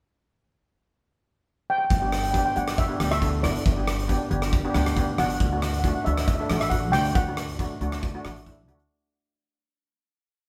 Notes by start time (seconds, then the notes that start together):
1.70 G5
1.78 G5
1.85 G5
1.90 G1, kick, closed hi-hat
2.00 B3 D4 G4 G5
2.08 G5
2.12 G5, cross-stick, closed hi-hat
2.23 G5, closed hi-hat
2.31 B3 D4 G4 G5, kick, closed hi-hat
2.38 G5
2.45 G5
2.56 G1 B3 D4 G4 F#5, closed hi-hat
2.68 cross-stick, closed hi-hat
2.78 E5, kick, closed hi-hat
2.88 B3 D4 G4
2.99 D2 B3 D4 G4, cross-stick, closed hi-hat
3.11 E5, cross-stick, closed hi-hat
3.22 B3 D4 A4, kick, closed hi-hat
3.43 G1 B3 D4 E4 D5, cross-stick, closed hi-hat
3.56 D5, closed hi-hat
3.66 G1 D5, kick, closed hi-hat
3.72 D5
3.76 B3 D4 G4
3.81 D5
3.88 D5, cross-stick, closed hi-hat
3.95 D5
3.99 closed hi-hat
4.03 D5
4.08 B3 D4 G4 D5, kick, closed hi-hat
4.18 D5
4.30 G1 B3 D4 G4, closed hi-hat
4.42 cross-stick, closed hi-hat
4.53 kick, closed hi-hat
4.65 B3 D4 G4
4.74 D2 B3 D4 G4, cross-stick, closed hi-hat
4.86 cross-stick, closed hi-hat
4.96 B3 D4 G4, kick, closed hi-hat
5.18 G1 B3 D4 F#4 F#5, cross-stick, closed hi-hat
5.26 F#5
5.30 closed hi-hat
5.34 F#5
5.40 D2 F#5, kick, closed hi-hat
5.50 A3 D4 F#4 F#5
5.57 F#5
5.62 F#5, cross-stick, closed hi-hat
5.73 F#5, closed hi-hat
5.79 F#5
5.84 A3 D4 F#4, kick, closed hi-hat
5.88 F#5
5.95 F#5
6.05 D2 A3 D4 F#4 E5, closed hi-hat
6.13 E5
6.17 E5, cross-stick, closed hi-hat
6.28 E5, kick, closed hi-hat
6.35 E5
6.40 A3 D4 A4 E5
6.50 A1 A3 D4 F#4, cross-stick, closed hi-hat
6.61 E5, cross-stick, closed hi-hat
6.70 A3 D4 F#4 F#5, kick, closed hi-hat
6.92 D2 A3 D4 F#4 G5, cross-stick, closed hi-hat
7.05 closed hi-hat
7.15 D2 F#5, kick, closed hi-hat
7.28 A3 D4 F#4
7.37 cross-stick, closed hi-hat
7.49 closed hi-hat
7.59 A3 D4 F#4, kick, closed hi-hat
7.81 D2 A3 D4 F#4, closed hi-hat
7.92 cross-stick, closed hi-hat
8.03 kick, closed hi-hat
8.14 A3 D4 F#4
8.25 A1 A3 D4 F#4, cross-stick, closed hi-hat
8.36 closed hi-hat
8.46 A3 D4 E4, kick, closed hi-hat
8.68 D2 A3 D4 F#4, closed hi-hat
8.80 closed hi-hat